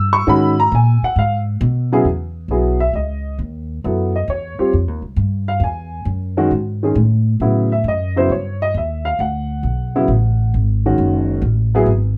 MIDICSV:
0, 0, Header, 1, 4, 480
1, 0, Start_track
1, 0, Key_signature, 4, "minor"
1, 0, Tempo, 446761
1, 279, Time_signature, 4, 2, 24, 8
1, 13081, End_track
2, 0, Start_track
2, 0, Title_t, "Upright piano"
2, 0, Program_c, 0, 0
2, 0, Note_on_c, 0, 88, 98
2, 120, Note_off_c, 0, 88, 0
2, 138, Note_on_c, 0, 85, 92
2, 281, Note_off_c, 0, 85, 0
2, 287, Note_on_c, 0, 51, 66
2, 293, Note_on_c, 0, 56, 57
2, 296, Note_on_c, 0, 61, 61
2, 300, Note_on_c, 0, 66, 68
2, 315, Note_on_c, 0, 83, 76
2, 577, Note_off_c, 0, 51, 0
2, 580, Note_off_c, 0, 56, 0
2, 581, Note_off_c, 0, 61, 0
2, 583, Note_off_c, 0, 66, 0
2, 614, Note_off_c, 0, 83, 0
2, 641, Note_on_c, 0, 82, 78
2, 772, Note_off_c, 0, 82, 0
2, 804, Note_on_c, 0, 80, 64
2, 1098, Note_off_c, 0, 80, 0
2, 1121, Note_on_c, 0, 78, 79
2, 1252, Note_off_c, 0, 78, 0
2, 1275, Note_on_c, 0, 77, 65
2, 1460, Note_off_c, 0, 77, 0
2, 2066, Note_on_c, 0, 49, 61
2, 2067, Note_on_c, 0, 54, 62
2, 2068, Note_on_c, 0, 59, 59
2, 2072, Note_on_c, 0, 64, 56
2, 2075, Note_on_c, 0, 68, 71
2, 2193, Note_off_c, 0, 49, 0
2, 2194, Note_off_c, 0, 54, 0
2, 2194, Note_off_c, 0, 59, 0
2, 2196, Note_off_c, 0, 64, 0
2, 2198, Note_off_c, 0, 68, 0
2, 2692, Note_on_c, 0, 54, 54
2, 2695, Note_on_c, 0, 59, 46
2, 2699, Note_on_c, 0, 64, 39
2, 2699, Note_on_c, 0, 68, 51
2, 2979, Note_off_c, 0, 54, 0
2, 2980, Note_off_c, 0, 59, 0
2, 2982, Note_off_c, 0, 64, 0
2, 2982, Note_off_c, 0, 68, 0
2, 3012, Note_on_c, 0, 76, 69
2, 3157, Note_off_c, 0, 76, 0
2, 3174, Note_on_c, 0, 75, 51
2, 3612, Note_off_c, 0, 75, 0
2, 4128, Note_on_c, 0, 54, 46
2, 4131, Note_on_c, 0, 59, 41
2, 4133, Note_on_c, 0, 64, 38
2, 4138, Note_on_c, 0, 69, 44
2, 4416, Note_off_c, 0, 54, 0
2, 4418, Note_off_c, 0, 59, 0
2, 4419, Note_off_c, 0, 64, 0
2, 4422, Note_off_c, 0, 69, 0
2, 4466, Note_on_c, 0, 75, 51
2, 4604, Note_off_c, 0, 75, 0
2, 4618, Note_on_c, 0, 73, 62
2, 4930, Note_on_c, 0, 55, 46
2, 4930, Note_on_c, 0, 65, 46
2, 4933, Note_on_c, 0, 60, 45
2, 4933, Note_on_c, 0, 67, 54
2, 5055, Note_off_c, 0, 73, 0
2, 5065, Note_off_c, 0, 55, 0
2, 5065, Note_off_c, 0, 65, 0
2, 5067, Note_off_c, 0, 60, 0
2, 5067, Note_off_c, 0, 67, 0
2, 5890, Note_on_c, 0, 77, 63
2, 6036, Note_off_c, 0, 77, 0
2, 6056, Note_on_c, 0, 80, 57
2, 6493, Note_off_c, 0, 80, 0
2, 6846, Note_on_c, 0, 61, 52
2, 6848, Note_on_c, 0, 56, 56
2, 6849, Note_on_c, 0, 51, 60
2, 6852, Note_on_c, 0, 66, 70
2, 6983, Note_off_c, 0, 61, 0
2, 6984, Note_off_c, 0, 51, 0
2, 6984, Note_off_c, 0, 56, 0
2, 6986, Note_off_c, 0, 66, 0
2, 7336, Note_on_c, 0, 51, 51
2, 7343, Note_on_c, 0, 56, 45
2, 7347, Note_on_c, 0, 61, 41
2, 7350, Note_on_c, 0, 68, 49
2, 7468, Note_off_c, 0, 51, 0
2, 7471, Note_off_c, 0, 56, 0
2, 7474, Note_off_c, 0, 61, 0
2, 7475, Note_off_c, 0, 68, 0
2, 7965, Note_on_c, 0, 49, 47
2, 7967, Note_on_c, 0, 64, 58
2, 7968, Note_on_c, 0, 54, 46
2, 7968, Note_on_c, 0, 59, 48
2, 8255, Note_off_c, 0, 49, 0
2, 8256, Note_off_c, 0, 54, 0
2, 8256, Note_off_c, 0, 64, 0
2, 8257, Note_off_c, 0, 59, 0
2, 8297, Note_on_c, 0, 76, 56
2, 8439, Note_off_c, 0, 76, 0
2, 8469, Note_on_c, 0, 75, 71
2, 8770, Note_on_c, 0, 49, 52
2, 8771, Note_off_c, 0, 75, 0
2, 8772, Note_on_c, 0, 54, 47
2, 8779, Note_on_c, 0, 64, 62
2, 8781, Note_on_c, 0, 59, 47
2, 8781, Note_on_c, 0, 72, 71
2, 8905, Note_off_c, 0, 49, 0
2, 8906, Note_off_c, 0, 54, 0
2, 8910, Note_off_c, 0, 59, 0
2, 8910, Note_off_c, 0, 64, 0
2, 8922, Note_off_c, 0, 72, 0
2, 8934, Note_on_c, 0, 73, 49
2, 9243, Note_off_c, 0, 73, 0
2, 9262, Note_on_c, 0, 75, 78
2, 9402, Note_off_c, 0, 75, 0
2, 9427, Note_on_c, 0, 76, 53
2, 9725, Note_on_c, 0, 77, 70
2, 9729, Note_off_c, 0, 76, 0
2, 9873, Note_off_c, 0, 77, 0
2, 9887, Note_on_c, 0, 78, 55
2, 10696, Note_on_c, 0, 49, 61
2, 10697, Note_on_c, 0, 59, 51
2, 10700, Note_on_c, 0, 64, 65
2, 10701, Note_on_c, 0, 54, 50
2, 10828, Note_off_c, 0, 49, 0
2, 10829, Note_off_c, 0, 59, 0
2, 10830, Note_off_c, 0, 64, 0
2, 10831, Note_off_c, 0, 54, 0
2, 11279, Note_off_c, 0, 78, 0
2, 11665, Note_on_c, 0, 51, 56
2, 11665, Note_on_c, 0, 56, 44
2, 11669, Note_on_c, 0, 61, 46
2, 11670, Note_on_c, 0, 66, 61
2, 12258, Note_off_c, 0, 51, 0
2, 12258, Note_off_c, 0, 56, 0
2, 12260, Note_off_c, 0, 61, 0
2, 12260, Note_off_c, 0, 66, 0
2, 12621, Note_on_c, 0, 59, 63
2, 12625, Note_on_c, 0, 54, 70
2, 12631, Note_on_c, 0, 68, 78
2, 12634, Note_on_c, 0, 64, 58
2, 12751, Note_off_c, 0, 59, 0
2, 12753, Note_off_c, 0, 54, 0
2, 12756, Note_off_c, 0, 68, 0
2, 12758, Note_off_c, 0, 64, 0
2, 13081, End_track
3, 0, Start_track
3, 0, Title_t, "Upright bass"
3, 0, Program_c, 1, 32
3, 0, Note_on_c, 1, 43, 85
3, 266, Note_off_c, 1, 43, 0
3, 290, Note_on_c, 1, 44, 70
3, 750, Note_off_c, 1, 44, 0
3, 769, Note_on_c, 1, 46, 80
3, 1068, Note_off_c, 1, 46, 0
3, 1244, Note_on_c, 1, 44, 75
3, 1707, Note_off_c, 1, 44, 0
3, 1726, Note_on_c, 1, 47, 92
3, 2188, Note_off_c, 1, 47, 0
3, 2196, Note_on_c, 1, 40, 59
3, 2662, Note_off_c, 1, 40, 0
3, 2667, Note_on_c, 1, 35, 63
3, 3137, Note_off_c, 1, 35, 0
3, 3152, Note_on_c, 1, 37, 59
3, 3620, Note_off_c, 1, 37, 0
3, 3638, Note_on_c, 1, 39, 66
3, 4103, Note_off_c, 1, 39, 0
3, 4130, Note_on_c, 1, 42, 68
3, 4589, Note_off_c, 1, 42, 0
3, 4594, Note_on_c, 1, 40, 72
3, 4899, Note_off_c, 1, 40, 0
3, 5085, Note_on_c, 1, 41, 66
3, 5240, Note_off_c, 1, 41, 0
3, 5240, Note_on_c, 1, 39, 51
3, 5387, Note_off_c, 1, 39, 0
3, 5394, Note_on_c, 1, 36, 49
3, 5544, Note_off_c, 1, 36, 0
3, 5548, Note_on_c, 1, 43, 79
3, 6007, Note_off_c, 1, 43, 0
3, 6014, Note_on_c, 1, 40, 71
3, 6491, Note_off_c, 1, 40, 0
3, 6503, Note_on_c, 1, 42, 75
3, 6976, Note_off_c, 1, 42, 0
3, 6990, Note_on_c, 1, 44, 68
3, 7459, Note_off_c, 1, 44, 0
3, 7471, Note_on_c, 1, 45, 83
3, 7940, Note_off_c, 1, 45, 0
3, 7950, Note_on_c, 1, 45, 70
3, 8416, Note_off_c, 1, 45, 0
3, 8423, Note_on_c, 1, 42, 70
3, 8895, Note_off_c, 1, 42, 0
3, 8911, Note_on_c, 1, 43, 64
3, 9380, Note_off_c, 1, 43, 0
3, 9392, Note_on_c, 1, 39, 68
3, 9860, Note_off_c, 1, 39, 0
3, 9872, Note_on_c, 1, 38, 69
3, 10340, Note_off_c, 1, 38, 0
3, 10347, Note_on_c, 1, 35, 69
3, 10818, Note_off_c, 1, 35, 0
3, 10827, Note_on_c, 1, 33, 70
3, 11298, Note_off_c, 1, 33, 0
3, 11324, Note_on_c, 1, 32, 71
3, 11787, Note_off_c, 1, 32, 0
3, 11795, Note_on_c, 1, 30, 73
3, 12259, Note_off_c, 1, 30, 0
3, 12265, Note_on_c, 1, 33, 76
3, 12737, Note_off_c, 1, 33, 0
3, 12743, Note_on_c, 1, 32, 71
3, 13081, Note_off_c, 1, 32, 0
3, 13081, End_track
4, 0, Start_track
4, 0, Title_t, "Muted upright bass strokes"
4, 1100, Note_on_c, 9, 29, 38
4, 1208, Note_off_c, 9, 29, 0
4, 4929, Note_on_c, 9, 29, 30
4, 5036, Note_off_c, 9, 29, 0
4, 13081, End_track
0, 0, End_of_file